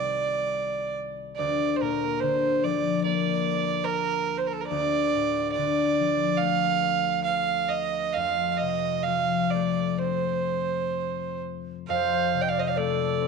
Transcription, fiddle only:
0, 0, Header, 1, 2, 480
1, 0, Start_track
1, 0, Tempo, 864553
1, 772, Time_signature, 4, 2, 24, 8
1, 772, Tempo, 826446
1, 2212, Tempo, 851064
1, 4132, Tempo, 898204
1, 5092, Tempo, 936037
1, 6532, Tempo, 884956
1, 7290, End_track
2, 0, Start_track
2, 0, Title_t, "Fiddle"
2, 0, Program_c, 0, 110
2, 0, Note_on_c, 0, 74, 71
2, 534, Note_off_c, 0, 74, 0
2, 754, Note_on_c, 0, 74, 72
2, 986, Note_on_c, 0, 72, 50
2, 995, Note_off_c, 0, 74, 0
2, 1020, Note_on_c, 0, 70, 68
2, 1029, Note_off_c, 0, 72, 0
2, 1244, Note_on_c, 0, 72, 78
2, 1253, Note_off_c, 0, 70, 0
2, 1496, Note_on_c, 0, 74, 69
2, 1505, Note_off_c, 0, 72, 0
2, 1725, Note_off_c, 0, 74, 0
2, 1728, Note_on_c, 0, 74, 76
2, 2194, Note_on_c, 0, 70, 79
2, 2203, Note_off_c, 0, 74, 0
2, 2497, Note_on_c, 0, 72, 53
2, 2505, Note_off_c, 0, 70, 0
2, 2546, Note_on_c, 0, 70, 55
2, 2555, Note_off_c, 0, 72, 0
2, 2582, Note_on_c, 0, 69, 58
2, 2591, Note_off_c, 0, 70, 0
2, 2627, Note_on_c, 0, 70, 57
2, 2635, Note_off_c, 0, 69, 0
2, 2657, Note_off_c, 0, 70, 0
2, 2660, Note_on_c, 0, 74, 92
2, 3134, Note_off_c, 0, 74, 0
2, 3143, Note_on_c, 0, 74, 90
2, 3620, Note_on_c, 0, 77, 101
2, 3628, Note_off_c, 0, 74, 0
2, 4108, Note_off_c, 0, 77, 0
2, 4111, Note_on_c, 0, 77, 84
2, 4349, Note_on_c, 0, 75, 81
2, 4357, Note_off_c, 0, 77, 0
2, 4587, Note_on_c, 0, 77, 84
2, 4595, Note_off_c, 0, 75, 0
2, 4796, Note_off_c, 0, 77, 0
2, 4796, Note_on_c, 0, 77, 62
2, 4823, Note_on_c, 0, 75, 81
2, 4831, Note_off_c, 0, 77, 0
2, 5067, Note_on_c, 0, 77, 79
2, 5075, Note_off_c, 0, 75, 0
2, 5312, Note_on_c, 0, 74, 68
2, 5320, Note_off_c, 0, 77, 0
2, 5559, Note_on_c, 0, 72, 65
2, 5567, Note_off_c, 0, 74, 0
2, 6294, Note_off_c, 0, 72, 0
2, 6532, Note_on_c, 0, 77, 77
2, 6822, Note_on_c, 0, 79, 64
2, 6830, Note_off_c, 0, 77, 0
2, 6861, Note_on_c, 0, 77, 67
2, 6869, Note_off_c, 0, 79, 0
2, 6920, Note_on_c, 0, 75, 58
2, 6928, Note_off_c, 0, 77, 0
2, 6962, Note_on_c, 0, 77, 61
2, 6970, Note_off_c, 0, 75, 0
2, 7016, Note_on_c, 0, 74, 71
2, 7024, Note_off_c, 0, 77, 0
2, 7290, Note_off_c, 0, 74, 0
2, 7290, End_track
0, 0, End_of_file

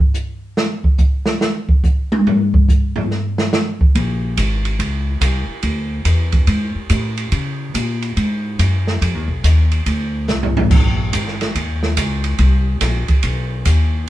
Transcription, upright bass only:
0, 0, Header, 1, 3, 480
1, 0, Start_track
1, 0, Key_signature, -5, "minor"
1, 0, Tempo, 422535
1, 649, Time_signature, 4, 2, 24, 8
1, 16006, End_track
2, 0, Start_track
2, 0, Title_t, "Upright bass"
2, 0, Program_c, 0, 32
2, 4489, Note_on_c, 0, 34, 97
2, 4955, Note_off_c, 0, 34, 0
2, 4971, Note_on_c, 0, 32, 100
2, 5436, Note_off_c, 0, 32, 0
2, 5443, Note_on_c, 0, 37, 90
2, 5912, Note_off_c, 0, 37, 0
2, 5918, Note_on_c, 0, 36, 96
2, 6213, Note_off_c, 0, 36, 0
2, 6396, Note_on_c, 0, 38, 97
2, 6865, Note_off_c, 0, 38, 0
2, 6871, Note_on_c, 0, 40, 97
2, 7345, Note_off_c, 0, 40, 0
2, 7353, Note_on_c, 0, 44, 96
2, 7650, Note_off_c, 0, 44, 0
2, 7838, Note_on_c, 0, 45, 94
2, 8308, Note_off_c, 0, 45, 0
2, 8313, Note_on_c, 0, 49, 99
2, 8785, Note_off_c, 0, 49, 0
2, 8795, Note_on_c, 0, 46, 98
2, 9266, Note_off_c, 0, 46, 0
2, 9278, Note_on_c, 0, 44, 97
2, 9747, Note_off_c, 0, 44, 0
2, 9757, Note_on_c, 0, 42, 99
2, 10226, Note_off_c, 0, 42, 0
2, 10240, Note_on_c, 0, 41, 102
2, 10391, Note_off_c, 0, 41, 0
2, 10391, Note_on_c, 0, 39, 61
2, 10529, Note_off_c, 0, 39, 0
2, 10536, Note_on_c, 0, 35, 74
2, 10698, Note_off_c, 0, 35, 0
2, 10719, Note_on_c, 0, 39, 89
2, 11187, Note_off_c, 0, 39, 0
2, 11202, Note_on_c, 0, 38, 94
2, 11669, Note_off_c, 0, 38, 0
2, 11678, Note_on_c, 0, 36, 94
2, 12146, Note_off_c, 0, 36, 0
2, 12161, Note_on_c, 0, 34, 96
2, 12628, Note_off_c, 0, 34, 0
2, 12642, Note_on_c, 0, 32, 92
2, 13109, Note_off_c, 0, 32, 0
2, 13121, Note_on_c, 0, 39, 90
2, 13588, Note_off_c, 0, 39, 0
2, 13594, Note_on_c, 0, 37, 96
2, 14064, Note_off_c, 0, 37, 0
2, 14072, Note_on_c, 0, 36, 101
2, 14543, Note_off_c, 0, 36, 0
2, 14549, Note_on_c, 0, 34, 95
2, 14846, Note_off_c, 0, 34, 0
2, 15035, Note_on_c, 0, 35, 96
2, 15505, Note_off_c, 0, 35, 0
2, 15512, Note_on_c, 0, 39, 99
2, 15983, Note_off_c, 0, 39, 0
2, 16006, End_track
3, 0, Start_track
3, 0, Title_t, "Muted upright bass strokes"
3, 6230, Note_on_c, 9, 29, 41
3, 6344, Note_off_c, 9, 29, 0
3, 7669, Note_on_c, 9, 29, 42
3, 7783, Note_off_c, 9, 29, 0
3, 14869, Note_on_c, 9, 29, 43
3, 14983, Note_off_c, 9, 29, 0
3, 16006, End_track
0, 0, End_of_file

